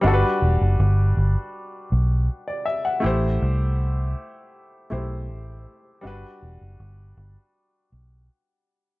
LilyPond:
<<
  \new Staff \with { instrumentName = "Grand piano" } { \time 4/4 \key g \major \tempo 4 = 80 << { r2. r16 d''16 e''16 fis''16~ | fis''16 r2. r8. | r1 | } \\ { <g d' fis' a' b'>1 | <a e' g' c''>2~ <a e' g' c''>8 <a e' g' c''>4. | <g d' fis' b'>1 | } >> }
  \new Staff \with { instrumentName = "Fingered electric bass" } { \clef bass \time 4/4 \key g \major g,,16 r16 e,,16 fis,,16 g,,8 g,,16 r8. b,,8 r4 | a,,8 c,4 r4 b,,8 a,,8 r8 | g,,16 r16 e,,16 fis,,16 g,,8 g,,16 r8. b,,8 r4 | }
>>